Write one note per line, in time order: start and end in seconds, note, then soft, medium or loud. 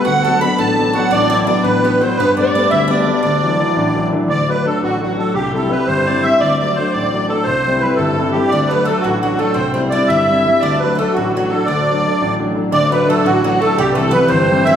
0.04 0.41 D2 medium
0.04 0.23 F#4 medium
0.04 0.24 F#5 medium
0.04 0.40 F#5 loud
0.23 0.40 A4 medium
0.23 0.42 A5 medium
0.27 0.42 F#3 soft
0.27 0.43 B3 soft
0.27 0.42 D4 soft
0.40 0.72 F#3 soft
0.40 0.72 B3 soft
0.40 0.72 D4 medium
0.40 0.58 B4 medium
0.40 0.57 B5 medium
0.40 0.59 B5 loud
0.58 0.94 A1 medium
0.58 0.93 A4 medium
0.58 1.13 A5 medium
0.58 0.92 A5 loud
0.78 0.93 F#3 soft
0.78 0.94 B3 soft
0.78 0.95 D4 soft
0.93 1.24 F#3 medium
0.93 1.24 B3 soft
0.93 1.25 D4 medium
0.93 1.10 F#4 medium
0.93 1.12 F#5 loud
1.11 1.47 A1 medium
1.11 1.29 D4 medium
1.11 1.47 D5 medium
1.11 1.46 D5 loud
1.30 1.46 F#3 soft
1.30 1.46 B3 soft
1.30 1.47 D4 soft
1.30 1.46 E4 medium
1.47 1.77 F#3 medium
1.47 1.77 B3 medium
1.47 1.64 D4 medium
1.47 1.77 D4 soft
1.47 1.65 D5 loud
1.47 1.66 D5 medium
1.63 1.99 A1 medium
1.63 1.83 B3 medium
1.63 2.01 B4 medium
1.63 2.02 B4 medium
1.83 1.99 F#3 soft
1.83 1.99 B3 soft
1.83 2.00 B3 medium
1.83 2.00 D4 soft
2.00 2.14 F#3 medium
2.00 2.14 B3 soft
2.00 2.16 C4 medium
2.00 2.14 D4 medium
2.00 2.18 C5 medium
2.00 2.17 C5 medium
2.17 2.53 G2 medium
2.17 2.37 B3 medium
2.17 2.35 B4 loud
2.17 2.27 B4 medium
2.37 2.54 G3 soft
2.37 2.54 A3 soft
2.37 2.54 B3 medium
2.37 2.54 D4 medium
2.37 2.52 D5 medium
2.37 2.73 D5 medium
2.54 2.84 G3 medium
2.54 2.84 A3 soft
2.54 2.84 B3 medium
2.54 2.70 D4 medium
2.54 2.71 D5 medium
2.70 3.06 D2 medium
2.70 2.87 E4 medium
2.70 2.90 E5 loud
2.70 2.92 E5 medium
2.88 3.05 G3 soft
2.88 3.05 A3 soft
2.88 3.05 B3 medium
2.88 3.20 D4 medium
2.88 3.21 D5 medium
2.88 3.01 D5 medium
3.01 3.12 D5 medium
3.06 3.20 G3 medium
3.06 3.20 A3 medium
3.06 3.20 B3 medium
3.13 3.23 D5 medium
3.23 3.59 D2 medium
3.23 4.08 D4 medium
3.23 4.08 D5 loud
3.23 4.08 D5 medium
3.43 3.58 E3 medium
3.43 3.59 F#3 soft
3.43 3.59 D4 medium
3.60 3.89 E3 medium
3.60 3.89 F#3 medium
3.60 3.89 D4 medium
3.76 4.11 A1 medium
3.95 4.11 E3 medium
3.95 4.12 F#3 soft
3.95 4.12 D4 medium
4.13 4.26 E3 medium
4.13 4.26 F#3 soft
4.13 4.26 D4 medium
4.28 4.63 D2 medium
4.28 4.52 D5 medium
4.28 4.49 D5 loud
4.48 4.63 F#3 soft
4.48 4.64 A3 soft
4.48 4.64 D4 soft
4.48 4.66 B4 medium
4.48 4.67 B4 medium
4.65 4.94 F#3 soft
4.65 4.94 A3 soft
4.65 4.94 D4 medium
4.65 4.82 A4 medium
4.65 4.81 A4 medium
4.82 5.17 A1 medium
4.82 5.00 F#4 medium
4.82 5.01 F#4 medium
5.01 5.16 F#3 soft
5.01 5.17 A3 soft
5.01 5.17 D4 soft
5.01 5.17 F#4 medium
5.01 5.37 F#4 medium
5.18 5.31 F#3 soft
5.18 5.31 A3 soft
5.18 5.32 D4 soft
5.18 5.34 A4 medium
5.34 5.69 C2 medium
5.34 5.52 G4 medium
5.34 5.89 G4 medium
5.53 5.68 G3 soft
5.53 5.69 C4 soft
5.53 5.69 E4 medium
5.53 5.71 A4 medium
5.70 5.99 G3 medium
5.70 5.99 C4 soft
5.70 6.00 E4 medium
5.70 5.88 B4 medium
5.87 6.22 G1 medium
5.87 6.24 C5 loud
5.87 6.08 C5 medium
6.07 6.22 G3 soft
6.07 6.23 C4 soft
6.07 6.23 E4 soft
6.07 6.23 D5 medium
6.23 6.37 G3 medium
6.23 6.37 C4 soft
6.23 6.38 E4 medium
6.23 6.40 E5 loud
6.23 6.43 E5 medium
6.40 6.76 D2 medium
6.40 6.58 D5 loud
6.40 6.60 D5 medium
6.59 6.76 F#3 soft
6.59 6.76 A3 soft
6.59 6.77 D4 medium
6.59 6.77 D5 medium
6.59 6.76 D5 medium
6.75 7.06 F#3 soft
6.75 7.06 A3 soft
6.75 7.06 D4 medium
6.75 6.93 C5 loud
6.75 6.96 C5 medium
6.92 7.29 A1 medium
6.92 7.26 D5 medium
6.92 7.32 D5 medium
7.13 7.30 F#3 soft
7.13 7.30 A3 soft
7.13 7.31 D4 soft
7.28 7.44 A3 soft
7.28 7.45 A4 medium
7.28 7.48 A4 medium
7.32 7.44 F#3 soft
7.32 7.44 D4 medium
7.44 7.81 C2 medium
7.44 7.82 C5 loud
7.44 7.83 C5 medium
7.66 7.81 G3 soft
7.66 7.81 C4 soft
7.66 7.82 E4 soft
7.80 8.11 G3 soft
7.80 8.11 C4 soft
7.80 8.12 E4 medium
7.80 7.96 B4 medium
7.80 8.00 B4 medium
7.96 8.33 G1 medium
7.96 8.31 A4 medium
7.96 8.36 A4 medium
8.17 8.33 G3 soft
8.17 8.34 C4 soft
8.17 8.34 E4 medium
8.32 8.48 G3 soft
8.32 8.48 C4 soft
8.32 8.48 E4 medium
8.32 8.50 G4 medium
8.32 8.51 G4 medium
8.48 8.70 D5 loud
8.48 8.71 D5 medium
8.52 8.87 D2 medium
8.52 8.72 D4 medium
8.67 8.85 F#3 soft
8.67 8.85 B3 medium
8.67 8.86 B4 medium
8.67 8.88 B4 medium
8.72 8.86 A3 soft
8.72 8.86 D4 soft
8.85 9.16 F#3 soft
8.85 9.02 A3 medium
8.85 9.16 A3 soft
8.85 9.16 D4 medium
8.85 9.03 A4 medium
8.85 9.05 A4 medium
9.01 9.39 A1 medium
9.01 9.22 F#3 medium
9.01 9.19 F#4 medium
9.01 9.21 F#4 medium
9.20 9.39 F#3 medium
9.20 9.37 F#3 soft
9.20 9.38 A3 soft
9.20 9.38 D4 medium
9.20 9.39 F#4 medium
9.20 9.40 F#4 medium
9.38 9.53 F#3 medium
9.38 9.54 A3 medium
9.38 9.53 A3 soft
9.38 9.53 D4 medium
9.38 9.56 A4 medium
9.54 9.91 C2 medium
9.54 9.73 C4 medium
9.54 9.72 C5 medium
9.54 9.75 C5 medium
9.73 9.90 G3 soft
9.73 9.90 C4 medium
9.73 9.91 C4 soft
9.73 9.91 E4 medium
9.73 9.82 C5 medium
9.73 9.84 C5 medium
9.90 10.21 G3 soft
9.90 10.21 C4 soft
9.90 10.10 D4 medium
9.90 10.22 E4 medium
9.90 10.08 D5 loud
9.90 10.12 D5 medium
10.07 10.44 G1 medium
10.07 10.59 E4 medium
10.07 10.63 E5 loud
10.07 10.62 E5 medium
10.29 10.44 G3 soft
10.29 10.44 C4 soft
10.29 10.44 E4 soft
10.46 10.59 G3 medium
10.46 10.59 C4 soft
10.46 10.59 E4 medium
10.60 10.97 D2 medium
10.60 10.92 D4 medium
10.60 10.79 D5 loud
10.60 10.82 D5 medium
10.79 10.97 F#3 soft
10.79 10.98 A3 soft
10.79 10.97 B4 medium
10.79 10.98 B4 medium
10.83 10.98 D4 soft
10.95 11.28 F#3 soft
10.95 11.14 A3 medium
10.95 11.28 A3 soft
10.95 10.98 B3 medium
10.95 11.15 A4 medium
11.00 11.28 D4 medium
11.13 11.50 A1 medium
11.13 11.36 F#3 medium
11.13 11.32 F#4 medium
11.13 11.29 F#4 medium
11.29 11.36 G4 medium
11.34 11.51 F#3 soft
11.34 11.70 F#3 medium
11.34 11.52 A3 soft
11.34 11.51 D4 soft
11.34 11.51 F#4 medium
11.34 11.52 F#4 medium
11.49 11.65 F#3 medium
11.49 11.65 A3 soft
11.49 11.65 D4 soft
11.49 11.67 A4 medium
11.49 11.66 A4 medium
11.66 12.03 D2 medium
11.66 12.36 D4 medium
11.66 12.35 D5 loud
11.66 12.35 D5 medium
11.89 12.05 F#3 soft
11.89 12.04 A3 soft
11.89 12.05 D4 soft
12.06 12.34 F#3 soft
12.06 12.34 A3 soft
12.06 12.34 D4 medium
12.21 12.55 A1 medium
12.40 12.54 F#3 soft
12.40 12.54 A3 soft
12.40 12.54 D4 soft
12.55 12.69 F#3 soft
12.55 12.69 A3 soft
12.55 12.69 D4 medium
12.71 13.73 D1 medium
12.71 13.07 D2 medium
12.71 12.91 D4 medium
12.71 12.91 D5 loud
12.71 12.91 D5 medium
12.89 13.05 F#3 soft
12.89 13.05 A3 soft
12.89 13.08 B3 medium
12.89 13.05 D4 soft
12.89 13.10 B4 medium
12.89 13.09 B4 medium
13.06 13.36 F#3 soft
13.06 13.36 A3 soft
13.06 13.25 A3 medium
13.06 13.36 D4 medium
13.06 13.27 A4 medium
13.06 13.26 A4 medium
13.24 13.60 A1 medium
13.24 13.43 F#3 medium
13.24 13.43 F#4 medium
13.24 13.44 F#4 loud
13.43 13.60 F#3 soft
13.43 13.60 F#3 medium
13.43 13.60 A3 soft
13.43 13.61 D4 medium
13.43 13.63 F#4 medium
13.43 13.62 F#4 medium
13.61 13.75 F#3 medium
13.61 13.77 A3 medium
13.61 13.75 A3 soft
13.61 13.75 D4 medium
13.61 13.75 A4 medium
13.61 13.77 A4 loud
13.75 14.13 C2 medium
13.75 13.98 G3 medium
13.75 13.95 G4 medium
13.75 13.93 G4 loud
13.93 14.11 A3 medium
13.93 14.14 A4 medium
13.93 13.97 B4 medium
13.98 14.12 E3 medium
13.98 14.13 G3 soft
13.98 14.13 C4 medium
14.11 14.42 E3 medium
14.11 14.43 G3 soft
14.11 14.28 B3 medium
14.11 14.43 C4 medium
14.11 14.28 B4 medium
14.11 14.30 B4 loud
14.27 14.65 G1 medium
14.27 14.63 C4 medium
14.27 14.66 C5 medium
14.27 14.66 C5 loud
14.50 14.63 E3 medium
14.50 14.63 G3 soft
14.50 14.63 C4 soft
14.64 14.76 E3 medium
14.64 14.76 G3 soft
14.64 14.76 C4 medium
14.64 14.76 E4 medium
14.64 14.76 E5 medium
14.64 14.76 E5 loud